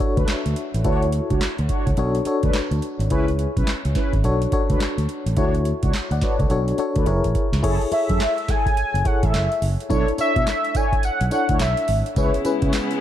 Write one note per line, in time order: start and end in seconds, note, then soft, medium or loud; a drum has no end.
0.00 0.86 D4 medium
0.00 0.85 F#4 medium
0.00 0.85 A4 medium
0.00 0.86 C#5 loud
0.00 0.86 E5 medium
0.00 kick medium
0.17 0.25 D2 medium
0.17 0.27 D4 medium
0.17 0.27 A4 medium
0.17 0.28 B4 medium
0.17 kick loud
0.17 closed hi-hat medium
0.28 snare loud
0.28 clap medium
0.28 closed hi-hat medium
0.46 0.54 D2 medium
0.46 closed hi-hat soft
0.56 closed hi-hat medium
0.74 0.82 A1 medium
0.74 closed hi-hat soft
0.84 1.19 D2 loud
0.84 1.02 D4 medium
0.84 1.90 E4 medium
0.84 1.02 F#4 medium
0.84 1.90 F#4 medium
0.84 1.90 A4 medium
0.84 0.93 B4 medium
0.84 1.02 C#5 loud
0.84 kick loud
0.84 closed hi-hat medium
0.92 1.93 C#5 medium
1.02 closed hi-hat medium
1.12 closed hi-hat medium
1.30 1.38 C#2 medium
1.30 1.41 D4 medium
1.30 1.41 F#4 medium
1.30 1.41 C#5 medium
1.30 kick loud
1.30 closed hi-hat medium
1.41 muted fingered electric bass stroke soft
1.41 snare loud
1.41 clap medium
1.41 closed hi-hat medium
1.58 1.67 D2 medium
1.58 closed hi-hat soft
1.69 1.86 D4 medium
1.69 1.87 F#4 medium
1.69 1.87 C#5 medium
1.69 kick medium
1.69 closed hi-hat medium
1.87 1.95 C#2 medium
1.87 kick medium
1.87 closed hi-hat soft
1.97 2.19 B1 loud
1.97 2.24 D4 medium
1.97 2.24 F#4 medium
1.97 2.24 A4 medium
1.97 2.25 C#5 loud
1.97 closed hi-hat medium
2.15 closed hi-hat soft
2.25 3.05 D4 medium
2.25 3.05 F#4 medium
2.25 3.05 A4 medium
2.25 3.06 C#5 medium
2.25 muted fingered electric bass stroke soft
2.25 closed hi-hat medium
2.43 2.51 D2 medium
2.43 2.54 D4 medium
2.43 2.54 A4 medium
2.43 2.54 B4 medium
2.43 kick loud
2.43 closed hi-hat medium
2.53 muted fingered electric bass stroke soft
2.53 snare loud
2.53 clap medium
2.53 closed hi-hat medium
2.71 2.79 D2 medium
2.71 closed hi-hat soft
2.82 closed hi-hat medium
2.99 3.08 G#1 medium
2.99 closed hi-hat soft
3.10 3.45 C#2 loud
3.10 3.28 C#4 medium
3.10 4.16 E4 medium
3.10 3.28 E4 medium
3.10 4.16 G#4 medium
3.10 3.28 B4 loud
3.10 4.16 B4 medium
3.10 4.17 C#5 loud
3.10 kick loud
3.10 closed hi-hat medium
3.28 closed hi-hat medium
3.39 closed hi-hat medium
3.57 3.65 B1 medium
3.57 3.67 C#4 medium
3.57 3.67 E4 medium
3.57 3.67 B4 medium
3.57 kick loud
3.57 closed hi-hat medium
3.67 snare loud
3.67 clap medium
3.67 closed hi-hat medium
3.85 3.93 C#2 medium
3.85 closed hi-hat soft
3.95 4.13 C#4 medium
3.95 4.13 E4 medium
3.95 4.13 B4 medium
3.95 kick medium
3.95 snare medium
3.95 closed hi-hat medium
4.13 4.21 G#1 medium
4.13 kick loud
4.13 closed hi-hat soft
4.24 4.45 B1 loud
4.24 4.50 D4 medium
4.24 4.50 F#4 medium
4.24 4.51 A4 medium
4.24 4.51 C#5 loud
4.24 closed hi-hat medium
4.42 closed hi-hat soft
4.52 5.31 D4 medium
4.52 5.31 F#4 medium
4.52 5.32 A4 medium
4.52 5.32 C#5 loud
4.52 muted fingered electric bass stroke soft
4.52 kick loud
4.52 closed hi-hat medium
4.70 4.78 D2 medium
4.70 4.80 D4 medium
4.70 4.80 A4 medium
4.70 4.81 B4 medium
4.70 kick medium
4.70 closed hi-hat medium
4.80 snare loud
4.80 clap medium
4.80 closed hi-hat medium
4.98 5.06 D2 medium
4.98 closed hi-hat soft
5.09 closed hi-hat medium
5.26 5.34 A1 medium
5.26 closed hi-hat soft
5.37 5.71 D2 loud
5.37 5.54 D4 medium
5.37 6.42 E4 medium
5.37 5.54 F#4 medium
5.37 6.43 F#4 medium
5.37 5.94 A4 medium
5.37 5.55 C#5 loud
5.37 5.94 C#5 loud
5.37 kick loud
5.37 closed hi-hat medium
5.55 closed hi-hat medium
5.65 closed hi-hat medium
5.83 5.91 C#2 medium
5.83 5.93 D4 medium
5.83 5.94 F#4 medium
5.83 5.94 C#5 medium
5.83 kick loud
5.83 closed hi-hat medium
5.93 muted fingered electric bass stroke soft
5.93 snare loud
5.93 clap loud
5.93 closed hi-hat medium
6.11 6.19 D2 medium
6.11 6.21 D5 medium
6.11 6.22 F#5 medium
6.11 closed hi-hat soft
6.21 6.39 D4 medium
6.21 6.39 F#4 medium
6.21 6.40 B4 medium
6.21 6.40 C#5 medium
6.21 6.39 D5 medium
6.21 kick medium
6.21 snare medium
6.21 closed hi-hat medium
6.39 6.47 C#2 medium
6.39 6.50 A4 medium
6.39 6.50 C#5 medium
6.39 kick loud
6.39 closed hi-hat soft
6.50 6.71 B1 loud
6.50 6.77 D4 medium
6.50 6.77 F#4 medium
6.50 6.77 A4 medium
6.50 6.77 C#5 loud
6.50 closed hi-hat medium
6.68 closed hi-hat medium
6.78 7.07 D4 medium
6.78 7.07 F#4 medium
6.78 7.07 A4 medium
6.78 7.06 C#5 loud
6.78 closed hi-hat medium
6.96 7.04 D2 medium
6.96 7.07 D4 medium
6.96 7.07 A4 medium
6.96 7.07 B4 medium
6.96 kick loud
6.96 closed hi-hat medium
7.06 7.20 F#1 loud
7.06 7.59 E4 medium
7.06 7.59 G#4 medium
7.06 7.60 A#4 medium
7.06 7.60 C#5 loud
7.06 kick medium
7.06 closed hi-hat medium
7.24 7.33 A1 medium
7.24 kick medium
7.24 closed hi-hat soft
7.35 kick medium
7.35 closed hi-hat medium
7.52 7.61 C#2 medium
7.52 snare medium
7.52 closed hi-hat medium
7.63 7.77 F#1 loud
7.63 7.89 E4 medium
7.63 7.81 E4 loud
7.63 7.90 G#4 medium
7.63 7.81 G#4 medium
7.63 7.90 A4 medium
7.63 7.81 A4 loud
7.63 7.90 C#5 loud
7.63 kick loud
7.63 closed hi-hat medium
7.63 crash loud
7.81 closed hi-hat medium
7.91 8.97 E4 medium
7.91 8.97 G#4 medium
7.91 8.97 A4 medium
7.91 8.98 C#5 medium
7.91 8.51 E5 loud
7.91 muted fingered electric bass stroke soft
7.91 closed hi-hat medium
8.09 8.18 F#2 loud
8.09 8.20 E4 medium
8.09 8.20 G#4 medium
8.09 8.20 A4 medium
8.09 kick loud
8.09 closed hi-hat medium
8.20 snare loud
8.20 clap loud
8.20 closed hi-hat medium
8.38 closed hi-hat soft
8.48 8.66 E4 medium
8.48 8.66 G#4 medium
8.48 8.66 A4 medium
8.48 9.08 G#5 loud
8.48 kick medium
8.48 snare medium
8.48 closed hi-hat medium
8.66 kick medium
8.66 closed hi-hat soft
8.77 closed hi-hat medium
8.94 9.02 F#1 medium
8.94 closed hi-hat soft
9.05 9.84 E4 medium
9.05 9.84 G#4 medium
9.05 9.84 A4 medium
9.05 9.85 C#5 medium
9.05 9.26 F#5 loud
9.05 kick loud
9.05 closed hi-hat medium
9.23 9.31 A1 medium
9.23 9.33 E4 medium
9.23 9.33 G#4 medium
9.23 9.33 A4 medium
9.23 9.63 E5 medium
9.23 kick loud
9.23 closed hi-hat medium
9.33 9.47 F#1 loud
9.33 snare loud
9.33 clap medium
9.33 closed hi-hat medium
9.52 closed hi-hat soft
9.62 9.75 F#1 medium
9.62 open hi-hat medium
9.80 closed hi-hat soft
9.90 10.04 B1 loud
9.90 10.16 D4 medium
9.90 10.07 D4 medium
9.90 10.16 E4 medium
9.90 10.07 E4 medium
9.90 10.16 A4 medium
9.90 10.07 A4 medium
9.90 10.07 C#5 loud
9.90 10.17 C#5 loud
9.90 kick loud
9.90 closed hi-hat medium
9.90 tambourine medium
10.08 closed hi-hat medium
10.18 11.23 D4 medium
10.18 11.24 E4 medium
10.18 11.24 A4 medium
10.18 11.24 C#5 medium
10.18 10.77 E5 medium
10.18 muted fingered electric bass stroke soft
10.18 closed hi-hat medium
10.18 tambourine medium
10.36 10.44 B2 loud
10.36 10.46 D4 medium
10.36 10.46 E4 medium
10.36 10.46 A4 medium
10.36 10.46 C#5 medium
10.36 kick loud
10.36 closed hi-hat medium
10.47 snare loud
10.47 clap medium
10.47 closed hi-hat medium
10.47 tambourine medium
10.65 closed hi-hat soft
10.75 10.92 D4 medium
10.75 10.92 E4 medium
10.75 10.93 A4 medium
10.75 10.93 C#5 medium
10.75 11.04 G#5 loud
10.75 kick loud
10.75 closed hi-hat medium
10.75 tambourine medium
10.92 kick loud
10.92 closed hi-hat soft
11.03 11.30 F#5 loud
11.03 closed hi-hat medium
11.03 tambourine medium
11.21 11.29 B1 medium
11.21 closed hi-hat medium
11.31 12.10 D4 medium
11.31 12.11 E4 medium
11.31 12.11 A4 medium
11.31 12.11 C#5 medium
11.31 11.59 F#5 medium
11.31 closed hi-hat medium
11.31 tambourine medium
11.49 11.57 D2 medium
11.49 11.60 D4 medium
11.49 11.60 E4 medium
11.49 11.60 A4 medium
11.49 11.60 C#5 medium
11.49 kick loud
11.49 closed hi-hat medium
11.59 11.73 B1 loud
11.59 12.03 E5 medium
11.59 snare loud
11.59 clap medium
11.59 closed hi-hat medium
11.59 tambourine medium
11.77 closed hi-hat soft
11.88 12.02 G#1 medium
11.88 open hi-hat medium
12.06 closed hi-hat medium
12.16 12.30 C#2 loud
12.16 13.01 C#3 medium
12.16 13.01 G#3 medium
12.16 13.01 B3 medium
12.16 12.43 C#4 medium
12.16 13.01 E4 medium
12.16 12.34 E4 medium
12.16 12.43 E4 medium
12.16 12.43 G#4 medium
12.16 12.34 B4 medium
12.16 12.44 B4 loud
12.16 12.34 C#5 loud
12.16 kick loud
12.16 closed hi-hat medium
12.16 tambourine medium
12.34 closed hi-hat medium
12.45 13.01 C#4 loud
12.45 13.01 E4 medium
12.45 13.01 G#4 medium
12.45 13.01 B4 loud
12.45 muted fingered electric bass stroke soft
12.45 closed hi-hat medium
12.45 tambourine medium
12.62 12.70 C#3 loud
12.62 12.73 E4 medium
12.62 12.73 B4 medium
12.62 12.73 C#5 medium
12.62 kick loud
12.62 closed hi-hat medium
12.73 snare loud
12.73 clap medium
12.73 closed hi-hat medium
12.73 tambourine loud
12.91 closed hi-hat soft